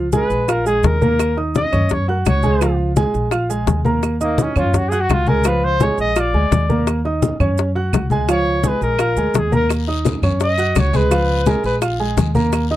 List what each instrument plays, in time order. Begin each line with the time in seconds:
Already playing: upright bass C#2
0.12 grand piano G#3 G#4 G#5, trumpet B4, high bongo, high conga, maracas
0.30 upright bass A#1, high bongo, high conga, maracas
0.48 grand piano F4 F5 F6, trumpet A#4, high bongo, high conga, claves, maracas
0.66 grand piano G#3 G#4 G#5, trumpet G#4, high bongo, high conga, maracas
0.83 upright bass D#2, trumpet A#4, high bongo, low bongo, high conga, maracas
1.01 grand piano A#3 A#4 A#5, high bongo, high conga, maracas
1.19 high bongo, claves, maracas
1.37 grand piano D#4 D#5 D#6, high bongo, high conga
1.55 trumpet D#5, high bongo, high conga, maracas
1.72 upright bass F#2, grand piano C#4 C#5 C#6, high bongo, high conga, low conga, claves, maracas
1.89 trumpet C#5, high bongo, high conga, low conga, maracas
2.08 grand piano F#4 F#5 F#6, trumpet A#4, high bongo, high conga
2.25 upright bass C#2, trumpet C#5, high bongo, low bongo, high conga, claves, maracas
2.43 grand piano G#3 G#4 G#5, high conga, maracas
2.61 grand piano F3 F4 F5, high bongo, high conga, claves, maracas
2.79 high conga
2.96 grand piano G#3 G#4 G#5, high bongo, high conga, maracas
3.14 upright bass A#1, high bongo, high conga, maracas
3.31 grand piano F4 F5 F6, high bongo, high conga, claves, maracas
3.49 grand piano G#3 G#4 G#5, high bongo, high conga, maracas
3.67 upright bass D#2, high bongo, low bongo, high conga, maracas
3.85 grand piano A#3 A#4 A#5, high bongo, high conga, maracas
4.03 high bongo, high conga, claves, maracas
4.21 trumpet A#3, grand piano D#4 D#5 D#6, high bongo, high conga, maracas
4.38 high bongo, high conga, maracas
4.42 trumpet C#4
4.56 upright bass F#2, grand piano C#4 C#5 C#6, trumpet F4, high bongo, high conga, low conga, claves, maracas
4.74 trumpet F#4, high bongo, high conga, low conga, maracas
4.89 grand piano F#4 F#5 F#6, trumpet G#4, high bongo, high conga, maracas
5.01 trumpet F#4
5.09 upright bass C#2, trumpet F4, high bongo, low bongo, high conga, claves, maracas
5.26 grand piano G#3 G#4 G#5, trumpet A#4, high conga, maracas
5.44 grand piano F3 F4 F5, high bongo, high conga, claves, maracas
5.48 trumpet B4
5.63 trumpet C5, high conga
5.80 grand piano G#3 G#4 G#5, trumpet C#5, high bongo, high conga, maracas
5.98 upright bass A#1, trumpet D#5, high bongo, high conga, maracas
6.16 grand piano F4 F5 F6, high bongo, high conga, claves, maracas
6.20 trumpet D5
6.34 upright bass D2, grand piano G#3 G#4 G#5, high bongo, high conga
6.51 upright bass D#2, high bongo, low bongo, high conga, maracas
6.69 grand piano A#3 A#4 A#5, high bongo, high conga, maracas
6.87 high bongo, high conga, claves, maracas
7.05 grand piano D#4 D#5 D#6, high bongo, high conga
7.22 high bongo, high conga, maracas
7.40 upright bass F#2, grand piano C#4 C#5 C#6, high bongo, high conga, low conga, claves, maracas
7.58 high bongo, high conga, maracas
7.75 grand piano F#4 F#5 F#6, high bongo, high conga
7.93 upright bass C#2, high bongo, low bongo, high conga, claves, maracas
8.10 grand piano G#3 G#4 G#5, high conga, maracas
8.28 grand piano F3 F4 F5, trumpet C#5, high bongo, high conga, claves, maracas
8.46 high conga
8.63 grand piano G#3 G#4 G#5, trumpet B4, high bongo, high conga, maracas
8.81 upright bass A#1, trumpet A#4, high bongo, high conga, maracas
8.98 grand piano F4 F5 F6, high bongo, high conga, claves, maracas
9.16 upright bass D2, grand piano G#3 G#4 G#5, high bongo, high conga, maracas
9.34 upright bass D#2, high bongo, low bongo, high conga, maracas
9.38 trumpet G#4
9.52 grand piano A#3 A#4 A#5, trumpet A#4, high bongo, high conga, maracas
9.69 high bongo, high conga, long guiro, claves, maracas
9.88 grand piano D#4 D#5 D#6, high bongo, high conga
10.05 high bongo, high conga, short guiro, maracas
10.22 upright bass F#2, grand piano C#4 C#5 C#6, high bongo, high conga, low conga, short guiro, claves, maracas
10.40 trumpet D#5, high bongo, high conga, long guiro, maracas
10.58 grand piano F#4 F#5 F#6, high bongo, high conga, maracas
10.75 upright bass C#2, trumpet C#5, high bongo, low bongo, high conga, short guiro, claves, maracas
10.93 grand piano G#3 G#4 G#5, trumpet B4, high conga, short guiro, maracas
11.11 grand piano F3 F4 F5, high bongo, high conga, long guiro, claves, maracas
11.29 high conga
11.46 grand piano G#3 G#4 G#5, trumpet A#4, high bongo, high conga, short guiro, maracas
11.64 upright bass A#1, trumpet B4, high bongo, high conga, short guiro, maracas
11.82 grand piano F4 F5 F6, high bongo, high conga, long guiro, claves, maracas
11.99 grand piano G#3 G#4 G#5, high bongo, high conga
12.17 upright bass D#2, high bongo, low bongo, high conga, short guiro, maracas
12.35 grand piano A#3 A#4 A#5, high bongo, high conga, short guiro, maracas
12.53 high bongo, high conga, long guiro, claves, maracas
12.71 grand piano D#4 D#5 D#6, high bongo, high conga